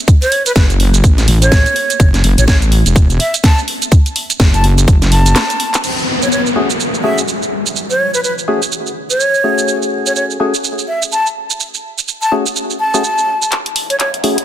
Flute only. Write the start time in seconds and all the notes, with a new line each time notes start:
0.22 C#5
0.46 B4
0.56 B4
1.42 C#5
2.38 C#5
2.48 C#5
3.20 E5
3.44 A5
4.54 A5
5.12 A5
6.22 C#5
6.32 C#5
7.04 E5
7.90 C#5
8.14 B4
8.24 B4
9.10 C#5
10.06 C#5
10.16 C#5
10.88 E5
11.12 A5
12.22 A5
12.80 A5
13.90 C#5
14.00 C#5